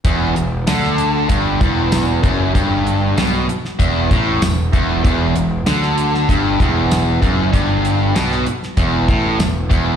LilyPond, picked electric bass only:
\new Staff \with { instrumentName = "Picked electric bass" } { \clef bass \time 4/4 \key e \minor \tempo 4 = 96 e,,8 e,,8 d,4 g,,8 e,,4 fis,,8 | g,,4 b,,8 r8 e,,8 a,,8 e,,8 e,,8 | e,,8 e,,8 d,4 g,,8 e,,4 fis,,8 | g,,4 b,,8 r8 e,,8 a,,8 e,,8 e,,8 | }